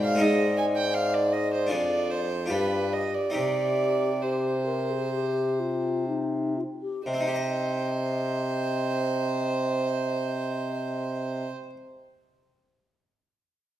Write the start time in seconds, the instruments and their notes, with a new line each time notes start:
Already playing: harpsichord G#2 F4 G4, bassoon G#2, flute D5
0.04 violin F5
0.15 harpsichord G#3 C4 D#4
0.19 harpsichord G#2 G#4, bassoon G#2, violin D#5
0.58 violin G#5
0.76 violin G5
0.94 violin F5
1.14 violin D5
1.33 violin D#5
1.54 violin C5
1.67 harpsichord D4 F4 G#4
1.71 bassoon F2, harpsichord F2, violin D5
2.11 violin C5
2.46 harpsichord D4 F4 G4
2.50 harpsichord G2, bassoon G2, flute G4, violin B4
2.93 violin D#5
3.14 violin D5
3.30 harpsichord C4 D#4 G4
3.34 harpsichord C3, bassoon C3, flute G4, violin D5
4.22 flute G4, violin C5
4.66 flute A#4
4.90 flute G#4
5.13 flute G4
5.60 flute F4
6.08 flute D#4
6.57 flute F4
6.82 flute G4
7.06 harpsichord C3, bassoon C3, violin C5, flute D#5
7.13 harpsichord C4
7.20 harpsichord D#4
7.28 harpsichord G4
7.34 harpsichord D#5